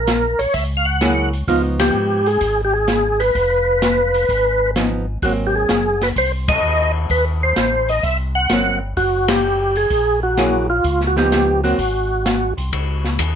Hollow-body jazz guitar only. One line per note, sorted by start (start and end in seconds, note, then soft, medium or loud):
1.01 1.30 F#3 medium
1.01 1.30 A#3 medium
1.01 1.30 E4 medium
1.01 1.30 G#4 medium
1.48 2.20 F3 medium
1.48 2.20 B3 medium
1.48 2.21 D#4 medium
4.76 5.04 F3 medium
4.76 5.05 B3 medium
4.76 5.05 D#4 medium
5.23 5.95 F#3 soft
5.23 5.95 A#3 medium
5.23 5.96 C4 soft
8.50 8.79 F#3 medium
8.50 8.79 A#3 medium
8.50 8.79 C4 medium
10.37 10.66 F#3 medium
10.37 10.67 A#3 medium
10.37 10.67 E4 medium
10.37 10.67 G#4 medium
11.16 11.60 F3 medium
11.16 11.60 B3 medium
11.16 11.61 D#4 medium
11.63 11.77 F#3 soft
11.63 11.77 A#3 medium
11.63 11.77 C4 medium